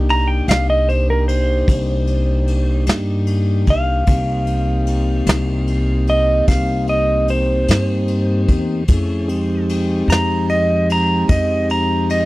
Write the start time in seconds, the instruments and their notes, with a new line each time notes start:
Already playing: upright bass C2, tonewheel organ A#3 D4 D#4 G4
0.09 electric slide guitar A#5, ride
0.28 electric slide guitar G5
0.48 upright bass C2, electric slide guitar F5, snare, ride
0.70 electric slide guitar D#5
0.89 electric slide guitar C5, ride
1.10 electric slide guitar A#4
1.28 electric slide guitar C5, ride
1.68 upright bass C2, kick, ride
2.07 ride
2.47 ride
2.87 upright bass G2, snare, ride
3.27 ride
3.67 upright bass C2, electric slide guitar F5, kick, ride
4.07 upright bass C2, tonewheel organ A#3 C4 D#4 G4, kick, ride
4.47 ride
4.87 ride
5.26 upright bass C2, snare, ride
5.67 ride
6.07 electric slide guitar D#5, ride
6.48 upright bass C2, electric slide guitar F5, kick, snare, ride
6.87 electric slide guitar D#5, ride
7.28 electric slide guitar C5, ride
7.68 upright bass G2, snare, ride
8.08 ride
8.48 upright bass E2, kick, ride
8.88 upright bass F2, tonewheel organ A3 C#4 E4 G#4, kick, ride
9.27 tonewheel organ G#3 C4 D#4 G4, ride
9.69 ride
10.08 upright bass F2, electric slide guitar A#5, ride
10.12 snare
10.49 electric slide guitar D#5, ride
10.90 electric slide guitar A#5, ride
11.29 upright bass F2, electric slide guitar D#5, kick, ride
11.69 electric slide guitar A#5, ride
12.10 electric slide guitar D#5, ride